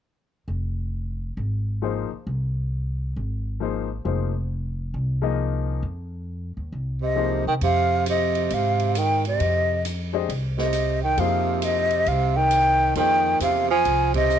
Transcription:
0.48 upright bass F1
1.37 upright bass G#1
1.82 upright piano F3 A#3 D#4 G#4 C5
2.11 muted upright bass stroke
2.27 upright bass C2
3.16 upright bass G#1
3.60 upright piano F3 A#3 D#4 G#4 C5
4.05 upright bass F1, upright piano F3 A#3 D#4 G#4 C5
4.94 upright bass C2
5.22 upright piano F3 A#3 D#4 G#4 D#5
5.83 upright bass F2
6.57 upright bass D#2
6.72 upright bass C2
7.01 tenor saxophone C3, flute D#5
7.16 upright piano F3 A#3 D#4 G#4 C5
7.46 upright bass C3, tenor saxophone D#3, flute G5
7.61 upright bass F2, tenor saxophone C3, flute F5, ride
8.06 tenor saxophone C3, flute D#5, hi-hat pedal, ride
8.35 ride
8.50 upright bass G#2, tenor saxophone C3, flute F5, ride
8.80 ride
8.95 tenor saxophone D#3, flute G5, hi-hat pedal, ride
9.25 tenor saxophone C3, flute D#5, ride
9.40 upright bass F2, ride
9.85 hi-hat pedal, ride
10.13 upright piano G#3 D4 G4 C5 D#5
10.29 upright bass C2, ride
10.58 tenor saxophone C3, flute D#5, snare
10.73 hi-hat pedal, ride
11.03 tenor saxophone D#3, flute G5
11.17 upright bass F2, tenor saxophone C3, upright piano F3 A#3 D#4 G#4 C5, flute F5, ride
11.62 tenor saxophone C3, flute D#5, hi-hat pedal, ride
11.90 ride
12.06 upright bass C2, tenor saxophone C3, flute F5, ride
12.36 tenor saxophone D#3, flute G5
12.51 hi-hat pedal, ride
12.95 upright bass F2, tenor saxophone D#3, upright piano F3 A#3 D#4 G#4 C5, flute G5, ride
13.40 upright bass E2, tenor saxophone C3, flute F5, hi-hat pedal, ride
13.70 tenor saxophone F3, flute G#5
13.85 upright bass C2, ride
14.14 tenor saxophone C3, flute D#5, kick, ride
14.30 hi-hat pedal

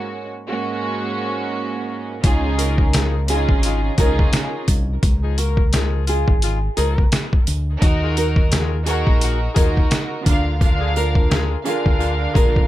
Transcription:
Already playing: string section G#2 G#3 A#3 C#4 F#4
0.48 string section G#2 G#3 A#3 C#4 F#4
2.22 fingered electric bass C#2, string section C#3 C#4 D#4 F4 G#4, kick, closed hi-hat, sleigh bells
2.46 saxophone section F3 D#4 G#4
2.58 saxophone section A#3 F#4 A#4, nylon-string guitar A#4, closed hi-hat, sleigh bells
2.78 kick
2.93 saxophone section F3 D#4 G#4, snare, closed hi-hat, sleigh bells
3.28 string section C#3 C#4 D#4 F4 G#4, saxophone section C#3 G#3 F4, nylon-string guitar G#4, closed hi-hat, sleigh bells
3.49 fingered electric bass G#1, kick
3.63 saxophone section C#3 G#3 F4, closed hi-hat, sleigh bells
3.96 fingered electric bass C#2, string section C#3 C#4 D#4 F4 G#4, saxophone section F3 D#4 G#4, nylon-string guitar A#4, kick, closed hi-hat, sleigh bells
4.19 kick
4.33 snare, closed hi-hat, sleigh bells
4.68 fingered electric bass C2, kick, closed hi-hat, sleigh bells
5.03 fingered electric bass C#2, kick, closed hi-hat, sleigh bells
5.23 saxophone section F3 D#4 G#4
5.38 saxophone section A#3 F#4 A#4, nylon-string guitar A#4, closed hi-hat, sleigh bells
5.57 kick
5.73 saxophone section F3 D#4 G#4, snare, closed hi-hat, sleigh bells
6.07 saxophone section C#3 G#3 F4, nylon-string guitar G#4, closed hi-hat, sleigh bells
6.28 fingered electric bass G#1, kick
6.42 saxophone section C#3 G#3 F4, closed hi-hat, sleigh bells
6.77 fingered electric bass C#2, saxophone section F3 D#4 G#4, nylon-string guitar A#4, closed hi-hat, sleigh bells
6.98 kick
7.12 snare, closed hi-hat, sleigh bells
7.33 kick
7.47 fingered electric bass D2, closed hi-hat, sleigh bells
7.80 fingered electric bass D#2, string section D#4 F#4 A#4, kick, closed hi-hat, sleigh bells
8.03 saxophone section G#3 F4 G#4
8.16 saxophone section F#3 D#4 A#4, nylon-string guitar A#4, closed hi-hat, sleigh bells
8.36 kick
8.51 saxophone section G#3 F4 G#4, snare, closed hi-hat, sleigh bells
8.86 saxophone section D#3 A#3 F#4, string section D#4 F#4 A#4, nylon-string guitar G#4, closed hi-hat, sleigh bells
9.07 fingered electric bass A#1, kick
9.21 saxophone section D#3 A#3 F#4, closed hi-hat, sleigh bells
9.55 fingered electric bass D#2, saxophone section G#3 F4 G#4, string section D#4 F#4 A#4, nylon-string guitar A#4, kick, closed hi-hat, sleigh bells
9.77 kick
9.91 snare, closed hi-hat, sleigh bells
10.25 fingered electric bass D2, string section D3 D4 F4 A#4 F5, kick, closed hi-hat, sleigh bells
10.60 string section D3 D4 F4 A#4 F5, kick, sleigh bells
10.80 saxophone section G#3 F4 G#4
10.96 saxophone section F3 D4 A#4, nylon-string guitar A#4, sleigh bells
11.15 kick
11.30 saxophone section G#3 F4 G#4, snare, sleigh bells
11.64 string section D3 D4 F4 A#4 F5, saxophone section D3 A#3 F4, nylon-string guitar G#4, sleigh bells
11.86 fingered electric bass D2, kick
11.99 saxophone section D3 A#3 F4, sleigh bells
12.34 fingered electric bass A#1, saxophone section G#3 F4 G#4, nylon-string guitar A#4, kick, sleigh bells
12.56 kick

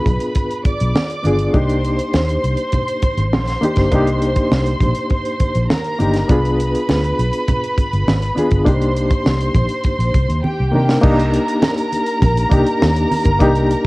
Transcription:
Already playing: reed electric piano B3 D4 F4 G#4, violin section B4 B5
0.06 fingered electric bass B1, kick, closed hi-hat, low conga
0.20 closed hi-hat
0.35 kick, closed hi-hat, muted conga
0.51 closed hi-hat
0.65 violin section D5 D6, muted fingered electric bass stroke, kick, closed hi-hat, muted conga
0.80 fingered electric bass B1, closed hi-hat
0.95 snare, high conga
1.10 closed hi-hat
1.22 fingered electric bass G1, reed electric piano B3 D4 F4, closed hi-hat, high conga
1.27 reed electric piano G#4
1.39 closed hi-hat
1.53 fingered electric bass C2, reed electric piano A#3 D4 D#4 G4, violin section C5 C6, kick, closed hi-hat, muted conga
1.69 closed hi-hat
1.85 closed hi-hat
1.99 closed hi-hat
2.14 fingered electric bass D#2, snare, high conga
2.29 closed hi-hat
2.44 fingered electric bass C2, closed hi-hat
2.57 closed hi-hat
2.72 kick, closed hi-hat, muted conga, low conga
2.88 closed hi-hat
3.02 muted fingered electric bass stroke, kick, closed hi-hat, muted conga
3.17 fingered electric bass G#1, closed hi-hat
3.33 fingered electric bass A#1, snare, high conga
3.47 snare, closed hi-hat
3.61 reed electric piano A#3 D4 D#4 G4, closed hi-hat, high conga
3.76 fingered electric bass G1, kick, snare, closed hi-hat
3.91 fingered electric bass C2, reed electric piano A#3 D4 D#4 G4, kick, closed hi-hat, muted conga
4.07 closed hi-hat
4.22 closed hi-hat
4.36 kick, closed hi-hat
4.52 fingered electric bass C2, snare, high conga
4.66 closed hi-hat
4.81 fingered electric bass A#1, kick, closed hi-hat, muted conga, low conga
4.95 closed hi-hat
5.10 kick, closed hi-hat, muted conga
5.25 closed hi-hat
5.40 muted fingered electric bass stroke, kick, closed hi-hat, muted conga
5.55 fingered electric bass A#1, closed hi-hat
5.70 violin section A#4 A#5, snare, high conga
5.84 closed hi-hat
5.98 fingered electric bass G1, reed electric piano A#3 D4 D#4 G4, closed hi-hat, high conga
6.13 snare, closed hi-hat
6.28 fingered electric bass C2, reed electric piano B3 D4 F4 G#4, violin section B4 B5, kick, closed hi-hat, muted conga
6.45 closed hi-hat
6.60 closed hi-hat
6.75 closed hi-hat
6.89 fingered electric bass D2, snare, high conga
7.04 closed hi-hat
7.19 fingered electric bass B1, closed hi-hat
7.33 closed hi-hat
7.48 kick, closed hi-hat, muted conga, low conga
7.64 closed hi-hat
7.78 muted fingered electric bass stroke, kick, closed hi-hat, muted conga
7.93 fingered electric bass G1, closed hi-hat
8.08 fingered electric bass G#1, snare, high conga
8.22 closed hi-hat
8.35 reed electric piano B3 D4 F4 G#4, closed hi-hat, high conga
8.51 fingered electric bass G1, kick, closed hi-hat
8.65 fingered electric bass C2, reed electric piano A#3 D4 D#4 G4, violin section C5 C6, kick, closed hi-hat, muted conga
8.82 closed hi-hat
8.96 closed hi-hat
9.10 kick, closed hi-hat
9.26 fingered electric bass C2, snare, high conga
9.41 closed hi-hat
9.55 fingered electric bass A#1, kick, closed hi-hat, muted conga, low conga
9.69 closed hi-hat
9.84 kick, closed hi-hat, muted conga
9.99 fingered electric bass A#1, closed hi-hat
10.14 fingered electric bass C2, kick, closed hi-hat, muted conga
10.29 fingered electric bass D#2, closed hi-hat
10.44 violin section G4 G5, high conga
10.60 fingered electric bass C2
10.72 fingered electric bass C3, reed electric piano A#3 D4 D#4 A#4, high conga
10.89 snare
11.01 fingered electric bass C2, reed electric piano A#3 D4 D#4 G4, violin section A#4 A#5, kick, crash, muted conga
11.19 closed hi-hat
11.34 closed hi-hat
11.48 closed hi-hat
11.62 snare, high conga
11.78 closed hi-hat
11.92 closed hi-hat, muted conga
12.06 closed hi-hat
12.22 fingered electric bass A#1, kick, closed hi-hat, muted conga, low conga
12.37 closed hi-hat
12.50 fingered electric bass C2, reed electric piano A#3 D4 D#4 G4, kick, closed hi-hat, muted conga
12.67 closed hi-hat
12.82 fingered electric bass D#2, snare, high conga
12.96 closed hi-hat
13.11 open hi-hat, high conga
13.25 fingered electric bass G1, kick, closed hi-hat
13.39 fingered electric bass C2, reed electric piano A#3 D4 D#4 G4, kick, closed hi-hat, muted conga
13.55 closed hi-hat
13.71 closed hi-hat

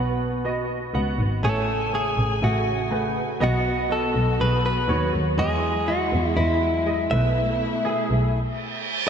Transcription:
Already playing: double bass B1, grand piano B2 B3 F#4 D#5 F#5, clean electric guitar B4
0.44 grand piano B3 F#4 D#5
0.94 double bass C#2, grand piano B3 F#4 F#5
1.18 double bass G#1
1.43 double bass A1, grand piano A2 A3 C#5 G#5, string section C#3 A3 G#5, clean electric guitar A4
1.93 grand piano A3 G#4 C#5, clean electric guitar G#4
2.17 double bass A1
2.42 double bass A1, grand piano A3 G#4 E5, clean electric guitar F#4
2.91 grand piano A3 G#4 B4
3.40 double bass B1, grand piano B2 B3 F#4 D#5, string section F#3 B3 F#4, clean electric guitar F#4
3.89 grand piano B3 F#4 D#5, clean electric guitar A4
4.14 double bass B1
4.40 double bass B1, grand piano B3 F#4 G#4, clean electric guitar B4
4.66 clean electric guitar B4
4.88 double bass D#2, grand piano B3 F#4 C#5
5.13 double bass D#2
5.37 double bass E2, grand piano E3 G#3 E4 D#5, string section G#3 E4, clean electric guitar G#4
5.88 grand piano G#3 E4 D#5, clean electric guitar F#4
6.12 double bass E2
6.37 double bass E2, grand piano G#3 E4 D#5, clean electric guitar E4
6.86 grand piano G#3 E4 D#5
7.09 double bass B1, string section B2 A3 E4, grand piano B2 A3 E4 B4, clean electric guitar E5
7.84 grand piano A3 E4 G#4
8.09 double bass B1
8.34 reverse cymbal

